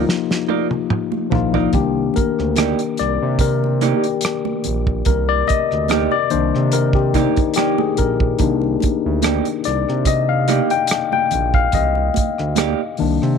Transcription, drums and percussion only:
0.09 snare
0.31 snare, muted conga
0.49 high conga
0.71 high tom
0.90 mid tom
1.12 high conga
1.31 floor tom, low conga
1.54 floor tom
1.73 kick, closed hi-hat, muted conga, low conga
2.14 kick, closed hi-hat, high conga
2.39 cross-stick
2.56 cross-stick, closed hi-hat, high conga
2.79 closed hi-hat
2.97 cross-stick, closed hi-hat
3.39 kick, closed hi-hat
3.64 muted conga
3.81 cross-stick, closed hi-hat, high conga
4.04 closed hi-hat
4.21 closed hi-hat, muted conga
4.25 cross-stick
4.45 muted conga, high conga
4.64 closed hi-hat, low conga
4.87 kick
5.05 kick, closed hi-hat, low conga
5.47 kick, closed hi-hat, high conga
5.71 cross-stick
5.88 cross-stick, closed hi-hat, muted conga, high conga
6.11 muted conga
6.30 closed hi-hat
6.55 cross-stick
6.72 closed hi-hat, muted conga
6.93 kick, muted conga
7.14 kick, cross-stick, closed hi-hat, high conga
7.37 kick, closed hi-hat
7.54 cross-stick, closed hi-hat, muted conga
7.78 muted conga, high conga
7.97 kick, closed hi-hat, low conga
8.20 kick
8.39 kick, closed hi-hat, low conga
8.62 muted conga
8.80 kick, closed hi-hat, high conga
9.22 cross-stick, closed hi-hat, muted conga, high conga
9.45 closed hi-hat, muted conga
9.64 cross-stick, closed hi-hat
9.89 cross-stick
10.05 kick, closed hi-hat, muted conga
10.48 cross-stick, closed hi-hat, high conga
10.70 closed hi-hat
10.87 cross-stick, closed hi-hat, muted conga
11.12 high conga
11.31 closed hi-hat, low conga
11.54 kick
11.72 kick, closed hi-hat, low conga
11.95 muted conga
12.14 kick, closed hi-hat, high conga
12.38 cross-stick
12.55 cross-stick, closed hi-hat, muted conga, high conga
12.97 open hi-hat
13.22 cross-stick

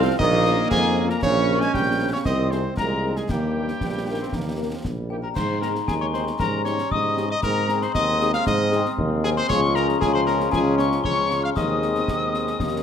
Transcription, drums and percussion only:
0.20 concert bass drum, snare
0.45 snare
0.71 concert bass drum, snare
1.10 snare
1.23 concert bass drum, snare, crash
1.61 snare
1.74 concert bass drum, snare
2.25 concert bass drum, snare
2.52 snare
2.77 concert bass drum, snare
3.16 snare
3.29 concert bass drum, snare, crash
3.68 snare
3.81 concert bass drum, snare
4.33 concert bass drum, snare
4.85 concert bass drum, snare
5.36 concert bass drum, snare, crash
5.62 snare
5.75 snare
5.88 concert bass drum, snare
6.14 snare
6.27 snare
6.40 concert bass drum, snare
6.66 snare
6.78 snare
6.91 concert bass drum
7.17 snare
7.43 concert bass drum, snare, crash
7.69 snare
7.82 snare
7.95 concert bass drum, snare
8.21 snare
8.34 snare
8.47 concert bass drum, snare
8.72 snare
8.86 snare
8.98 concert bass drum
9.24 snare
9.50 concert bass drum, snare, crash
9.76 snare
9.89 snare
10.02 concert bass drum, snare
10.28 snare
10.40 snare
10.53 concert bass drum, snare
10.79 snare
10.92 snare
11.05 concert bass drum
11.31 snare
11.57 concert bass drum, snare, crash
11.82 snare
11.95 snare
12.08 concert bass drum, snare
12.34 snare
12.47 snare
12.60 concert bass drum, snare

